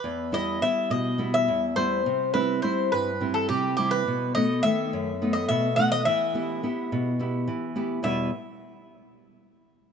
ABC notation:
X:1
M:7/8
L:1/16
Q:1/4=105
K:Em
V:1 name="Bouzouki"
B2 ^d2 e2 d3 e3 c2- | c2 B2 c2 B3 A G2 G B- | B2 ^d2 e4- e d e2 f d | e12 z2 |
e2 z12 |]
V:2 name="Nylon-string guitar"
E,,2 [G,B,E]2 [G,B,E]2 B,,2 [G,B,E]2 E,,2 [G,B,E]2 | C,2 [G,CE]2 [G,CE]2 G,,2 [G,CE]2 C,2 [G,CE]2 | B,,2 [A,B,^D]2 [^D,A,B,]2 F,,2 [A,B,D]2 B,,2 [A,B,D]2 | E,2 [B,EG]2 [B,EG]2 B,,2 [B,EG]2 E,2 [B,EG]2 |
[E,,B,,G,B,EB]2 z12 |]